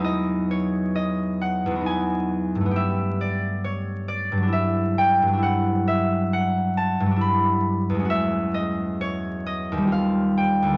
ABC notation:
X:1
M:3/4
L:1/8
Q:1/4=67
K:Elyd
V:1 name="Harp"
[Bcd] c d f g2 | e =d c d e =g | f e f =a b2 | e d c d ^e =g |]
V:2 name="Harp"
[E,,F,G,B,D]4 [E,,F,B,D]2 | [=G,,=A,B,=G]4 [G,,F,=DE]2 | [=G,,F,=DE]4 [G,,F,DE]2 | [E,,G,CF]4 [D,,=G,^B,^E]2 |]